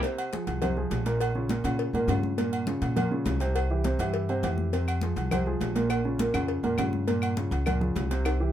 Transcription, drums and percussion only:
0.03 cowbell, high conga, low agogo
0.18 high conga, low agogo
0.33 cowbell, high conga, low timbale
0.47 cowbell, high conga, low agogo
0.62 cowbell, high conga, low conga, low agogo
0.77 high conga
0.91 cowbell, high conga, low timbale, low agogo
1.06 cowbell, low agogo
1.20 cowbell, high conga, low agogo
1.35 high conga
1.49 cowbell, high conga, low timbale, low agogo
1.64 cowbell, high conga, low agogo
1.79 cowbell, high conga
1.94 high conga, low agogo
2.08 cowbell, high conga, low timbale, low agogo
2.23 high conga
2.38 cowbell, high conga, low agogo
2.53 high conga, low agogo
2.67 cowbell, high conga, low timbale
2.82 cowbell, high conga, low agogo
2.96 cowbell, high conga, low conga, low agogo
3.11 high conga
3.26 cowbell, high conga, low timbale, low agogo
3.40 cowbell, low agogo
3.56 cowbell, high conga, low agogo
3.70 high conga
3.84 cowbell, high conga, low timbale, low agogo
3.99 cowbell, high conga, low agogo
4.14 cowbell, high conga
4.29 high conga, low agogo
4.43 cowbell, high conga, low timbale, low agogo
4.58 high conga
4.73 cowbell, high conga, low agogo
4.87 high conga, low agogo, claves
5.01 cowbell, high conga, low timbale
5.17 cowbell, high conga, low agogo
5.31 cowbell, high conga, low conga, low agogo, claves
5.46 high conga
5.61 cowbell, high conga, low timbale, low agogo
5.76 cowbell, low agogo
5.90 cowbell, high conga, low agogo, claves
6.05 high conga
6.19 cowbell, high conga, low timbale, low agogo
6.34 cowbell, high conga, low agogo, claves
6.48 cowbell, high conga
6.64 low agogo
6.78 cowbell, high conga, low timbale, low agogo, claves
6.93 high conga
7.08 cowbell, low agogo
7.22 high conga, low agogo, claves
7.37 cowbell, high conga, low timbale
7.52 cowbell, high conga, low agogo
7.66 cowbell, high conga, low conga, low agogo, claves
7.81 high conga, low conga
7.96 cowbell, high conga, low timbale, low agogo
8.11 cowbell, low agogo
8.25 cowbell, high conga, high timbale, low agogo, claves
8.40 high conga

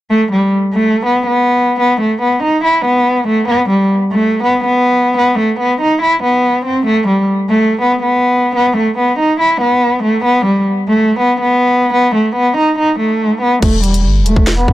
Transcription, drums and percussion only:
13.62 kick, closed hi-hat, crash
13.84 closed hi-hat
13.94 closed hi-hat
14.26 closed hi-hat
14.36 kick
14.47 snare, closed hi-hat
14.68 kick

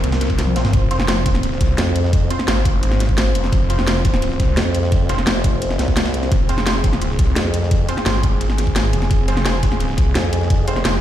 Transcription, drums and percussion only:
0.04 closed hi-hat, ride
0.12 snare, ride
0.21 snare, closed hi-hat
0.30 kick, ride
0.39 snare, closed hi-hat, ride
0.47 high tom
0.56 snare, closed hi-hat, ride
0.65 snare, mid tom, ride
0.73 kick, closed hi-hat, ride
0.91 closed hi-hat, ride
1.00 snare
1.08 snare, closed hi-hat, ride
1.17 snare
1.26 kick, snare, closed hi-hat, ride
1.35 snare
1.43 closed hi-hat, ride
1.52 snare
1.61 kick, snare, closed hi-hat, ride
1.78 snare, closed hi-hat, ride
1.87 snare
1.96 closed hi-hat, ride
2.04 snare
2.13 kick, closed hi-hat, ride
2.31 closed hi-hat, ride
2.39 snare
2.48 snare, closed hi-hat, ride
2.57 snare
2.65 kick, closed hi-hat, ride
2.83 closed hi-hat, ride
2.92 snare
3.00 snare, closed hi-hat, ride
3.09 kick
3.18 snare, closed hi-hat, ride
3.26 ride
3.35 closed hi-hat, ride
3.44 snare
3.52 kick, closed hi-hat, ride
3.70 closed hi-hat, ride
3.79 snare
3.87 snare, closed hi-hat, ride
3.96 snare
4.05 kick, snare, closed hi-hat, ride
4.14 snare
4.22 closed hi-hat, ride
4.31 snare
4.40 kick, snare, closed hi-hat, ride
4.57 snare, closed hi-hat, ride
4.66 snare
4.75 closed hi-hat, ride
4.83 snare
4.92 kick, closed hi-hat, ride
5.09 closed hi-hat, ride
5.18 snare
5.27 snare, closed hi-hat, ride
5.36 snare
5.44 kick, closed hi-hat, ride
5.62 closed hi-hat, ride
5.70 snare
5.79 snare, closed hi-hat, ride
5.88 kick, snare
5.97 snare, closed hi-hat, ride
6.05 snare, ride
6.14 snare, closed hi-hat
6.23 snare, ride
6.32 kick, closed hi-hat, ride
6.49 closed hi-hat, ride
6.58 snare
6.66 snare, closed hi-hat, ride
6.75 snare
6.84 kick, snare, closed hi-hat, ride
6.93 snare
7.01 closed hi-hat, ride
7.10 snare
7.19 kick, snare, closed hi-hat, ride
7.36 snare, closed hi-hat, ride
7.45 snare
7.54 closed hi-hat, ride
7.62 snare
7.71 kick, closed hi-hat, ride
7.89 closed hi-hat, ride
7.97 snare
8.06 snare, closed hi-hat, ride
8.15 snare
8.23 kick, closed hi-hat, ride
8.41 closed hi-hat, ride
8.50 snare
8.58 snare, closed hi-hat, ride
8.67 kick
8.76 snare, closed hi-hat, ride
8.84 ride
8.93 closed hi-hat, ride
9.02 snare
9.11 kick, closed hi-hat, ride
9.28 closed hi-hat, ride
9.37 snare
9.46 snare, closed hi-hat, ride
9.54 snare
9.63 kick, snare, closed hi-hat, ride
9.72 snare
9.80 closed hi-hat, ride
9.89 snare
9.98 kick, snare, closed hi-hat, ride
10.15 snare, closed hi-hat, ride
10.24 snare
10.33 closed hi-hat, ride
10.41 snare
10.50 kick, closed hi-hat, ride
10.68 closed hi-hat, ride
10.76 snare
10.85 snare, closed hi-hat, ride
10.94 snare

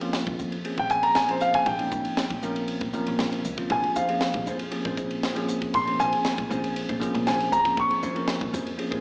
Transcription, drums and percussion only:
0.01 ride
0.13 snare, ride
0.27 kick, ride
0.39 hi-hat pedal
0.52 ride
0.65 ride
0.78 kick, ride
0.90 kick, hi-hat pedal
1.03 ride
1.15 snare, ride
1.29 ride
1.41 hi-hat pedal
1.54 kick, ride
1.66 kick, ride
1.79 ride
1.91 kick, hi-hat pedal
2.05 ride
2.17 snare, ride
2.30 kick, ride
2.43 hi-hat pedal
2.56 ride
2.68 ride
2.81 kick, ride
2.93 hi-hat pedal
3.07 ride
3.19 snare, ride
3.33 ride
3.44 hi-hat pedal
3.57 kick, ride
3.70 kick, ride
3.84 ride
3.96 hi-hat pedal
4.09 ride
4.21 snare, ride
4.34 kick, ride
4.46 hi-hat pedal
4.59 ride
4.72 ride
4.85 kick, ride
4.97 kick, hi-hat pedal
5.11 ride
5.23 snare, ride
5.36 ride
5.49 hi-hat pedal
5.62 kick, ride
5.74 kick, ride
5.87 ride
6.00 hi-hat pedal
6.13 ride
6.25 snare, ride
6.38 kick, ride
6.51 hi-hat pedal
6.64 ride
6.76 ride
6.89 kick, ride
7.01 kick, hi-hat pedal
7.15 ride
7.27 snare, ride
7.40 snare, ride
7.52 hi-hat pedal
7.65 kick, snare, ride
7.77 kick, ride
7.91 ride
8.03 hi-hat pedal
8.16 ride
8.28 snare, ride
8.41 kick, ride
8.53 hi-hat pedal
8.67 ride
8.79 ride
8.92 kick, ride

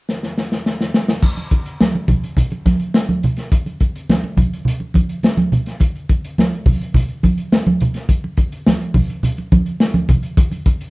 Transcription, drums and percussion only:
0.09 snare
0.23 snare
0.38 snare
0.52 snare
0.66 snare
0.81 snare
0.94 snare
1.08 snare
1.22 kick, crash, muted conga
1.37 closed hi-hat, muted conga
1.51 kick, closed hi-hat
1.66 closed hi-hat
1.81 snare, high conga
1.95 muted conga
2.08 kick, closed hi-hat, high conga, low conga
2.24 closed hi-hat
2.37 kick, closed hi-hat, low conga
2.50 closed hi-hat, muted conga
2.66 kick, snare, closed hi-hat, high conga
2.80 closed hi-hat
2.94 snare
3.08 closed hi-hat, high conga
3.23 closed hi-hat, low conga
3.37 snare, closed hi-hat
3.52 kick, closed hi-hat
3.66 closed hi-hat, muted conga
3.80 kick, closed hi-hat
3.95 closed hi-hat
4.10 snare, muted conga, high conga
4.24 muted conga
4.37 kick, closed hi-hat, high conga, low conga
4.53 closed hi-hat
4.65 closed hi-hat, low conga
4.80 muted conga
4.94 kick, closed hi-hat, high conga
5.09 closed hi-hat
5.23 snare, muted conga
5.37 closed hi-hat, muted conga, high conga
5.52 closed hi-hat, low conga
5.66 snare, closed hi-hat
5.80 kick, closed hi-hat, muted conga
5.95 closed hi-hat
6.09 kick, closed hi-hat
6.25 closed hi-hat
6.38 snare, muted conga, high conga
6.53 closed hi-hat
6.66 kick, open hi-hat, high conga, low conga
6.81 closed hi-hat
6.94 kick, closed hi-hat, muted conga, low conga
7.08 closed hi-hat
7.23 kick, closed hi-hat, high conga
7.37 closed hi-hat
7.52 snare, muted conga
7.66 closed hi-hat, muted conga, high conga
7.80 closed hi-hat, low conga
7.94 snare, closed hi-hat
8.09 kick, closed hi-hat
8.24 muted conga
8.37 kick, closed hi-hat
8.52 closed hi-hat
8.66 snare, muted conga, high conga
8.81 closed hi-hat
8.94 kick, open hi-hat, high conga, low conga
9.10 closed hi-hat
9.23 closed hi-hat, muted conga, low conga
9.37 closed hi-hat, muted conga
9.52 kick, closed hi-hat, high conga
9.66 closed hi-hat
9.80 snare
9.94 closed hi-hat, muted conga, high conga
10.09 kick, closed hi-hat, low conga
10.23 closed hi-hat
10.37 kick, closed hi-hat
10.52 closed hi-hat, muted conga
10.66 kick, closed hi-hat
10.81 closed hi-hat

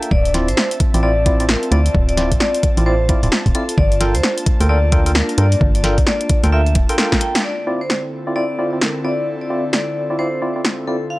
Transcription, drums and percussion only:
0.03 closed hi-hat
0.11 kick
0.25 closed hi-hat
0.34 snare, closed hi-hat
0.48 closed hi-hat
0.57 snare
0.71 closed hi-hat
0.80 kick, closed hi-hat
0.94 closed hi-hat
1.26 kick, closed hi-hat
1.40 closed hi-hat
1.49 snare
1.63 closed hi-hat
1.72 closed hi-hat
1.86 closed hi-hat
1.95 kick
2.09 closed hi-hat
2.17 snare, closed hi-hat
2.32 kick, closed hi-hat
2.40 snare
2.54 closed hi-hat
2.63 kick, closed hi-hat
2.77 closed hi-hat
3.09 kick, closed hi-hat
3.23 closed hi-hat
3.32 snare
3.46 kick, closed hi-hat
3.55 closed hi-hat
3.69 closed hi-hat
3.78 kick
3.92 closed hi-hat
4.01 snare, closed hi-hat
4.15 closed hi-hat
4.23 snare
4.38 closed hi-hat
4.46 kick, closed hi-hat
4.60 closed hi-hat
4.92 kick, closed hi-hat
5.06 closed hi-hat
5.15 snare
5.29 closed hi-hat
5.38 closed hi-hat
5.52 closed hi-hat
5.61 kick
5.75 closed hi-hat
5.84 snare, closed hi-hat
5.98 kick, closed hi-hat
6.07 snare
6.21 closed hi-hat
6.29 kick, closed hi-hat
6.44 snare, closed hi-hat
6.67 closed hi-hat
6.75 kick, closed hi-hat
6.89 closed hi-hat
6.98 snare
7.12 kick, snare, closed hi-hat
7.21 closed hi-hat
7.35 snare, closed hi-hat
7.90 snare
8.81 snare
9.73 snare
10.65 snare

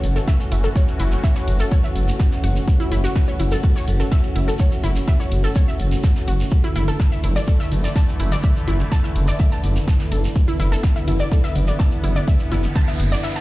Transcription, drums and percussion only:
0.04 open hi-hat, ride
0.16 ride, shekere
0.28 kick, snare, ride, shekere
0.40 shekere
0.52 open hi-hat, ride
0.64 shekere
0.76 kick, ride, shekere
0.88 ride, shekere
1.00 snare, open hi-hat, ride
1.12 shekere
1.23 kick, snare, ride, shekere
1.35 snare, shekere
1.48 open hi-hat, ride
1.59 shekere
1.71 kick, ride, shekere
1.84 snare, shekere
1.96 open hi-hat, ride
2.08 ride, shekere
2.19 kick, snare, ride, shekere
2.32 snare, shekere
2.44 open hi-hat, ride
2.56 shekere
2.68 kick, ride, shekere
2.80 shekere
2.91 snare, open hi-hat, ride
3.04 shekere
3.15 kick, snare, ride, shekere
3.28 shekere
3.40 open hi-hat, ride
3.52 shekere
3.63 kick, ride, shekere
3.77 snare, shekere
3.88 open hi-hat, ride
4.00 ride, shekere
4.11 kick, snare, ride, shekere
4.23 shekere
4.36 open hi-hat, ride
4.48 shekere
4.58 kick, ride, shekere
4.72 ride, shekere
4.84 snare, open hi-hat, ride
4.96 shekere
5.07 kick, snare, ride, shekere
5.20 snare, shekere
5.32 open hi-hat, ride
5.44 shekere
5.55 kick, ride, shekere
5.68 snare, shekere
5.80 open hi-hat, ride
5.91 ride, shekere
6.03 kick, snare, ride, shekere
6.16 snare, shekere
6.28 open hi-hat, ride
6.40 shekere
6.51 kick, ride, shekere
6.64 shekere
6.75 snare, open hi-hat, ride
6.88 shekere
7.00 kick, snare, ride, shekere
7.12 shekere
7.24 open hi-hat, ride
7.36 shekere
7.47 kick, ride, shekere
7.60 snare, shekere
7.72 open hi-hat, ride
7.84 ride, shekere
7.96 kick, snare, ride, shekere
8.09 shekere
8.19 open hi-hat, ride
8.32 shekere
8.43 kick, ride, shekere
8.55 ride, shekere
8.68 snare, open hi-hat, ride
8.80 shekere
8.91 kick, snare, ride, shekere
9.04 snare, shekere
9.16 open hi-hat, ride
9.28 shekere
9.39 kick, ride, shekere
9.52 snare, shekere
9.63 open hi-hat, ride
9.75 ride, shekere
9.88 kick, snare, ride, shekere
9.99 snare, shekere
10.11 open hi-hat, ride
10.24 shekere
10.35 kick, ride, shekere
10.48 shekere
10.60 snare, open hi-hat, ride
10.72 shekere
10.83 kick, snare, ride, shekere
10.96 shekere
11.08 open hi-hat, ride
11.19 shekere
11.32 kick, ride, shekere
11.44 snare, shekere
11.56 open hi-hat, ride
11.68 ride, shekere
11.79 kick, snare, ride, shekere
11.91 shekere
12.04 open hi-hat
12.16 shekere
12.28 kick, ride, shekere
12.39 ride, shekere
12.51 snare, open hi-hat, ride
12.63 shekere
12.75 kick, snare, ride, shekere
12.88 snare, shekere
13.00 open hi-hat, ride
13.13 shekere
13.23 snare, ride, shekere
13.29 snare, ride
13.35 snare, ride, shekere

